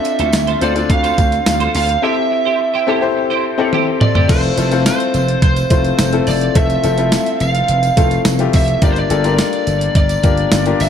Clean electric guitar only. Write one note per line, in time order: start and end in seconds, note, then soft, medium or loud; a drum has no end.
0.05 muted clean electric guitar stroke soft
0.19 0.32 F4 medium
0.19 0.32 A4 medium
0.19 0.33 C5 medium
0.33 muted clean electric guitar stroke soft
0.47 0.60 F4 medium
0.47 0.61 A4 medium
0.47 0.61 C5 medium
0.61 0.79 F4 medium
0.61 0.75 A4 medium
0.61 0.74 C5 loud
0.75 muted clean electric guitar stroke soft
0.90 muted clean electric guitar stroke soft
1.03 1.17 F4 medium
1.03 1.17 A4 medium
1.03 1.18 C5 medium
1.18 muted clean electric guitar stroke soft
1.32 muted clean electric guitar stroke soft
1.46 muted clean electric guitar stroke soft
1.60 1.73 F4 medium
1.60 1.74 A4 medium
1.60 1.75 C5 medium
1.74 1.88 F4 medium
1.74 1.89 A4 medium
1.74 1.87 C5 medium
1.89 muted clean electric guitar stroke medium
2.03 2.20 E4 medium
2.03 2.17 G4 medium
2.03 2.16 C5 medium
2.17 muted clean electric guitar stroke soft
2.31 muted clean electric guitar stroke soft
2.45 2.58 E4 medium
2.45 2.59 G4 medium
2.45 2.59 C5 medium
2.60 muted clean electric guitar stroke soft
2.74 2.87 E4 medium
2.74 2.88 G4 medium
2.74 2.87 C5 medium
2.88 3.05 E4 medium
2.88 3.02 G4 medium
2.88 3.01 C5 medium
3.02 muted clean electric guitar stroke medium
3.17 muted clean electric guitar stroke soft
3.30 3.43 E4 medium
3.30 3.44 G4 medium
3.30 3.44 C5 medium
3.45 muted clean electric guitar stroke soft
3.59 muted clean electric guitar stroke medium
3.73 3.90 E4 medium
3.73 3.87 G4 medium
3.73 3.86 C5 medium
3.87 muted clean electric guitar stroke medium
4.01 muted clean electric guitar stroke soft
4.15 4.30 E4 medium
4.15 4.29 G4 medium
4.15 4.29 C5 medium